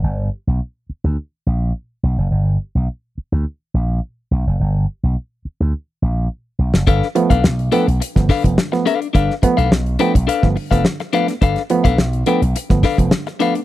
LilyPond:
<<
  \new Staff \with { instrumentName = "Clean electric guitar" } { \time 4/4 \key g \mixolydian \tempo 4 = 106 r1 | r1 | r1 | <d' a' b' f''>16 r8 <d' a' b' f''>16 r8 <d' a' b' g''>16 r8. <d' a' b' f''>16 r8. <d' a' b' f''>16 r16 |
<d' a' b' f''>16 r8 <d' a' b' f''>16 r8 <d' a' b' g''>16 r16 <d' a' b' f''>16 r8 <d' a' b' f''>16 r8 <d' a' b' f''>16 r16 | <d' a' b' f''>16 r8 <d' a' b' f''>16 r8 <d' a' b' g''>16 r8. <d' a' b' f''>16 r8. <d' a' b' f''>16 r16 | }
  \new Staff \with { instrumentName = "Reed electric piano" } { \time 4/4 \key g \mixolydian << { r1 | r1 | r1 | r8 <f a b>16 <a b>16 r8 <f a b>16 r8 <f a b>16 r16 <f a b>16 r16 <f a b>16 <a b>16 r16 |
r8 <f a b>16 r8. <f a b>16 r8 <f a b>16 r16 <f a b>16 r8 <f a b>16 <a b>16 | r8 <f a b>16 r8. <f a b>16 r8 <f a b>16 r16 <f a b>16 r8 <f a b>16 <a b>16 | } \\ { r1 | r1 | r1 | <g, d>8 r2 d8 <g, d>8 r8 |
<g, d>8 r2 <g, d>8 <g, d>8 r8 | <g, d>8 r2 d8 <g, d>8 r8 | } >> }
  \new Staff \with { instrumentName = "Slap bass" } { \clef bass \time 4/4 \key g \mixolydian g,,8 r16 b,,16 r8. d,16 r8 bes,,8 r8 b,,16 fis,,16 | g,,8 r16 b,,16 r8. d,16 r8 bes,,8 r8 b,,16 fis,,16 | g,,8 r16 b,,16 r8. d,16 r8 bes,,8 r8 b,,16 fis,,16 | g,,16 r8 b,,16 b,,8 r16 b,,16 r16 g,,16 r16 f,,16 r4 |
g,,16 r8 b,,16 b,,8 r16 b,,16 r16 g,,16 r16 f,,16 r4 | g,,16 r8 b,,16 b,,8 r16 b,,16 r16 g,,16 r16 f,,16 r4 | }
  \new DrumStaff \with { instrumentName = "Drums" } \drummode { \time 4/4 r4 r4 r4 r4 | r4 r4 r4 r4 | r4 r4 r4 r8. sn16 | <hh bd>16 sn16 hh16 <hh bd>16 sn16 hh16 hh16 hh16 hh16 <hh bd sn>16 <hho bd sn>16 <hh bd>16 sn16 <hh sn>16 hh16 hh16 |
<hh bd>16 sn16 <hh bd>16 hh16 sn16 hh16 hh16 <hh bd>16 hh16 <bd sn>16 hho16 <hh bd sn>16 sn16 <hh sn>16 hh16 <hh sn>16 | <hh bd>16 <hh sn>16 hh16 <hh bd>16 sn16 hh16 hh16 hh16 hh16 <hh bd sn>16 <hho bd sn>16 <hh bd>16 sn16 <hh sn>16 hh16 hh16 | }
>>